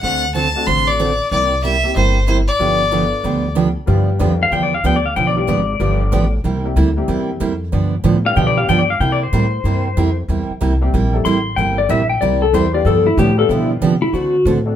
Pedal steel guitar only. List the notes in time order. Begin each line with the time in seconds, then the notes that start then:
4.43 F5
4.53 G5
4.63 D5
4.74 F5
4.86 G5
4.96 D5
5.06 F5
5.16 G5
5.27 D5
5.38 D5
8.26 F5
8.37 G5
8.47 D5
8.58 F5
8.69 G5
8.79 D5
8.90 F5
9.01 G5
9.12 D5
9.23 C5
11.25 C6
11.56 G5
11.78 D5
11.90 E5
12.10 G5
12.21 D5
12.42 A4
12.54 C5
12.74 D5
12.86 A4
13.07 E4
13.19 G4
13.39 A4
13.50 E4
14.02 E4
14.14 F#4